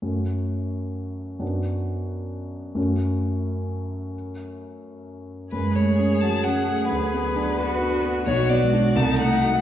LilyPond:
<<
  \new Staff \with { instrumentName = "Violin" } { \time 6/8 \key fis \minor \tempo 4. = 88 r2. | r2. | r2. | r2. |
b'8 cis''4 a''8 fis''4 | b'2~ b'8 r8 | cis''8 d''4 a''8 ges''4 | }
  \new Staff \with { instrumentName = "Viola" } { \time 6/8 \key fis \minor r2. | r2. | r2. | r2. |
gis'2.~ | gis'4. fis'4. | fis'4. ees'4. | }
  \new Staff \with { instrumentName = "Grand piano" } { \time 6/8 \key fis \minor <fis, a cis' fis'>2. | <fis, b d' fis'>2. | <fis, a cis' fis'>2.~ | <fis, a cis' fis'>2. |
fis,8 a8 cis'8 fis'8 cis'8 a8 | d,8 b8 d'8 fis'8 d'8 b8 | b,,8 b8 <d' fis'>8 c,8 a8 <ees' ges'>8 | }
  \new Staff \with { instrumentName = "Cello" } { \clef bass \time 6/8 \key fis \minor r2. | r2. | r2. | r2. |
gis4. fis4. | fis4. b4. | fis8. gis8. a4. | }
>>